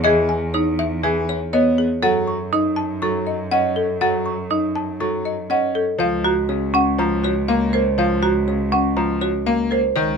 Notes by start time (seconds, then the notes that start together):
Already playing: E2 G#4
0.04 E3 G#4 D#5
0.29 G#5
0.54 D#4 C#5
0.79 E5
1.03 E3 G#4 G#5
1.29 C#5
1.53 B3 C#5 D#5
1.78 G#4
2.02 F#2 F#3 A4 F#5
2.27 C#6
2.53 D#4 D#5
2.76 A5
3.02 F#3 A4 C#6
3.27 D#5
3.51 C#4 D#5 F#5
3.76 A4
4.01 F#3 A4 F#5
4.26 C#6
4.50 D#4 D#5
4.76 A5
5.00 F#3 A4 C#6
5.25 D#5
5.50 C#4 D#5 F#5
5.75 A4
5.99 C#2 F3 F5
6.24 F#4 A#5
6.49 C#3 C#5
6.74 C#4 F#5
6.98 F3 A#5
7.24 F#4 C#5
7.48 A#3 F5
7.73 A#4 C5
7.98 F3 F5
8.23 F#4 A#5
8.47 C#3 C#5
8.72 C#4 F#5
8.97 F3 A#5
9.21 F#4 C#5
9.46 A#3 F5
9.71 A#4 C5
9.96 C#2 D#3 C#5